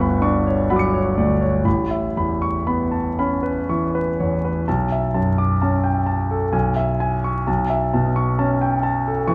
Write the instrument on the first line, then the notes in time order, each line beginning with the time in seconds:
grand piano
Already playing: G1 D2 B3 F#5 C#6
0.00 B5
0.22 D4 C#6
0.47 C#5
0.70 F#3 F#5 B5
0.76 D6 C#7
0.94 C#5
1.17 D2 D5
1.41 C#5
1.65 A1 B5
1.91 E5
2.17 E2 B5
2.42 C#6
2.67 B3 B5
2.91 A5
3.19 C#4 B5
3.43 B4
3.69 E3 C#6
3.95 B4
4.20 E2 C#5
4.45 B4
4.68 B1 A5
4.92 E5
5.14 F#2 A5
5.38 D6
5.62 C#4 A5
5.84 G5
6.06 A5
6.31 A4
6.53 B1 G#5
6.76 E5
7.00 G#5
7.24 C#6
7.47 B1 A5
7.70 E5
7.94 B2 A5
8.16 C#6
8.39 C#4 A5
8.61 G5
8.83 A5
9.07 A4
9.28 E3 C#6